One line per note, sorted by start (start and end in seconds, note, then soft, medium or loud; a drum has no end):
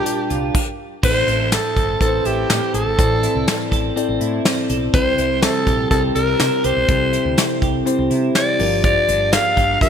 0.00 0.56 A#2 medium
0.00 0.59 G3 medium
0.00 0.57 D4 medium
0.00 0.29 F4 medium
0.00 0.57 F4 medium
0.00 0.56 G4 medium
0.00 0.76 G4 loud
0.00 0.56 A#4 medium
0.00 0.59 A#4 medium
0.00 0.49 A5 medium
0.06 0.59 D4 medium
0.06 closed hi-hat medium
0.30 0.49 C2 loud
0.30 0.59 F4 medium
0.30 closed hi-hat medium
0.55 kick loud
0.55 crash medium
1.03 1.22 A1 medium
1.03 1.73 A2 medium
1.03 1.83 C4 medium
1.03 1.52 C4 medium
1.03 1.83 E4 medium
1.03 1.83 A4 medium
1.03 1.83 C5 medium
1.03 1.55 C5 loud
1.03 kick loud
1.03 crash medium
1.27 1.55 A1 loud
1.27 2.25 E4 medium
1.27 closed hi-hat medium
1.52 2.00 C4 medium
1.52 2.01 A4 loud
1.52 snare loud
1.52 closed hi-hat medium
1.52 tambourine medium
1.77 1.95 G1 medium
1.77 2.72 A4 medium
1.77 kick medium
1.77 closed hi-hat medium
2.00 2.19 A1 loud
2.00 2.80 C4 medium
2.00 2.49 C4 medium
2.00 2.80 E4 medium
2.00 2.80 A4 medium
2.00 2.28 A4 medium
2.00 2.07 B4 medium
2.00 kick medium
2.00 closed hi-hat medium
2.07 2.83 C5 medium
2.25 2.44 A1 medium
2.25 3.22 E4 medium
2.25 2.74 G4 medium
2.25 closed hi-hat medium
2.50 2.59 A2 medium
2.50 2.98 C4 medium
2.50 snare loud
2.50 closed hi-hat medium
2.50 tambourine medium
2.74 2.83 A1 medium
2.74 3.70 A4 medium
2.74 3.68 A4 medium
2.74 closed hi-hat medium
2.86 2.96 G#1 medium
2.98 3.26 A1 loud
2.98 3.68 A2 medium
2.98 3.47 C4 medium
2.98 3.78 C4 medium
2.98 3.78 E4 medium
2.98 3.78 A4 medium
2.98 3.78 D5 medium
2.98 kick loud
2.98 closed hi-hat loud
3.23 4.20 E4 medium
3.23 closed hi-hat medium
3.35 3.44 C2 medium
3.48 3.96 C4 medium
3.48 snare loud
3.48 closed hi-hat medium
3.48 tambourine medium
3.71 3.90 A1 medium
3.71 4.69 A4 medium
3.71 kick medium
3.71 closed hi-hat medium
3.96 4.75 C4 medium
3.96 4.45 C4 medium
3.96 4.76 E4 medium
3.96 4.76 A4 medium
3.96 4.76 D5 medium
3.96 closed hi-hat medium
4.09 4.18 A1 medium
4.21 4.39 A2 medium
4.21 5.18 E4 medium
4.21 closed hi-hat medium
4.45 5.42 C4 medium
4.45 snare loud
4.45 closed hi-hat medium
4.45 tambourine medium
4.69 4.88 B1 medium
4.69 4.99 A4 medium
4.69 closed hi-hat medium
4.94 5.12 C2 loud
4.94 5.63 C3 medium
4.94 6.88 G3 medium
4.94 5.73 C4 medium
4.94 5.73 E4 medium
4.94 5.73 G4 medium
4.94 5.44 C5 loud
4.94 5.74 C5 medium
4.94 kick loud
4.94 closed hi-hat loud
5.18 5.46 C2 medium
5.18 6.15 E4 medium
5.18 closed hi-hat medium
5.42 5.90 C4 medium
5.42 5.90 A4 loud
5.42 snare loud
5.42 closed hi-hat medium
5.42 tambourine medium
5.67 5.85 A#1 medium
5.67 6.63 G4 medium
5.67 kick medium
5.67 closed hi-hat medium
5.90 6.09 C2 medium
5.90 6.70 C4 medium
5.90 6.38 C4 medium
5.90 6.70 E4 medium
5.90 6.71 G4 medium
5.90 6.02 A4 medium
5.90 6.71 A#4 medium
5.90 kick medium
5.90 closed hi-hat medium
6.15 6.34 C2 medium
6.15 6.27 D4 medium
6.15 6.66 A#4 loud
6.15 closed hi-hat medium
6.27 7.11 E4 medium
6.39 6.49 C3 medium
6.39 7.36 C4 medium
6.39 snare loud
6.39 closed hi-hat medium
6.39 tambourine medium
6.64 6.74 C2 medium
6.64 7.61 G4 medium
6.64 7.62 C5 loud
6.64 closed hi-hat medium
6.76 6.86 B1 medium
6.88 7.16 C2 loud
6.88 7.58 C3 medium
6.88 8.59 G3 medium
6.88 7.68 C4 medium
6.88 7.68 E4 medium
6.88 7.68 G4 medium
6.88 7.68 A4 medium
6.88 kick loud
6.88 closed hi-hat loud
7.13 8.09 E4 medium
7.13 closed hi-hat medium
7.25 7.34 D2 medium
7.37 7.85 C4 medium
7.37 snare loud
7.37 closed hi-hat medium
7.37 tambourine medium
7.62 7.80 C2 medium
7.62 8.87 G4 medium
7.62 kick medium
7.62 closed hi-hat medium
7.86 8.59 C4 medium
7.86 8.34 C4 medium
7.86 8.59 E4 medium
7.86 8.59 G4 medium
7.86 8.60 C5 medium
7.86 closed hi-hat medium
7.99 8.08 C2 medium
8.10 8.29 C3 medium
8.10 8.64 E4 medium
8.10 closed hi-hat medium
8.35 8.64 C4 medium
8.35 8.81 D5 loud
8.35 snare loud
8.35 closed hi-hat medium
8.35 tambourine medium
8.59 8.96 G1 medium
8.59 9.29 G2 medium
8.59 8.83 F3 medium
8.59 9.39 D4 medium
8.59 9.39 F4 medium
8.59 9.39 G4 medium
8.59 9.39 A#4 medium
8.59 open hi-hat medium
8.84 9.89 F3 medium
8.84 9.35 D5 loud
8.84 kick loud
8.84 closed hi-hat loud
9.08 9.36 G1 loud
9.08 9.89 D4 medium
9.08 closed hi-hat medium
9.32 9.80 A#3 medium
9.32 9.81 F5 loud
9.32 snare loud
9.32 closed hi-hat medium
9.32 tambourine medium
9.57 9.75 G1 medium
9.57 9.89 G4 medium
9.57 kick medium
9.57 closed hi-hat medium
9.81 9.89 F1 loud
9.81 9.89 A#3 medium
9.81 9.89 D4 medium
9.81 9.89 F4 medium
9.81 9.89 G4 medium
9.81 9.89 A#4 medium
9.81 9.89 F5 loud
9.81 kick medium
9.81 closed hi-hat medium